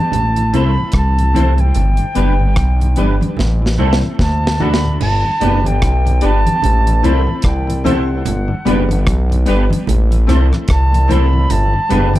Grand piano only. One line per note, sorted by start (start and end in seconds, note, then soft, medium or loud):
0.53 0.77 C4 medium
0.53 0.77 E4 medium
0.53 0.77 A4 medium
0.53 0.77 C5 loud
1.34 1.58 C4 medium
1.34 1.58 E4 medium
1.34 1.57 A4 medium
1.34 1.57 C5 loud
1.58 1.65 A4 soft
1.58 1.65 C5 soft
2.15 2.39 B3 medium
2.15 2.39 D4 medium
2.15 2.39 G4 medium
2.15 2.40 B4 loud
2.97 3.20 B3 medium
2.97 3.20 D4 medium
2.97 3.20 G4 medium
2.97 3.20 B4 loud
3.21 3.28 G4 soft
3.21 3.28 B4 soft
3.78 4.02 C4 medium
3.78 4.02 E4 medium
3.78 4.02 A4 medium
3.78 4.03 C5 medium
4.60 4.83 D4 medium
4.60 4.83 F#4 medium
4.60 4.82 A4 medium
4.60 4.82 D5 loud
4.84 4.90 A4 soft
4.84 4.90 D5 soft
5.40 5.64 D4 medium
5.40 5.64 G4 medium
5.40 5.64 B4 medium
5.40 5.65 D5 loud
6.21 6.45 D4 loud
6.21 6.45 G4 medium
6.21 6.44 B4 medium
6.21 6.44 D5 loud
6.46 6.53 B4 soft
6.46 6.53 D5 soft
7.03 7.27 C4 loud
7.03 7.27 E4 medium
7.03 7.27 A4 medium
7.03 7.27 C5 loud
7.84 8.08 C4 medium
7.84 8.08 E4 medium
7.84 8.08 A4 medium
7.84 8.08 C5 loud
8.09 8.16 A4 soft
8.09 8.15 C5 soft
8.65 8.89 B3 medium
8.65 8.89 D4 medium
8.65 8.89 G4 medium
8.65 8.90 B4 loud
9.46 9.70 B3 medium
9.46 9.70 D4 medium
9.46 9.69 G4 medium
9.46 9.68 B4 loud
9.70 9.77 G4 soft
9.70 9.77 B4 soft
10.26 10.51 C4 medium
10.26 10.51 E4 medium
10.26 10.51 A4 medium
10.26 10.52 C5 loud
11.08 11.32 C4 loud
11.08 11.32 E4 medium
11.08 11.31 A4 medium
11.08 11.31 C5 loud
11.32 11.39 A4 soft
11.32 11.40 C5 soft
11.89 12.13 B3 medium
11.89 12.14 D4 medium
11.89 12.14 G4 medium
11.89 12.14 B4 loud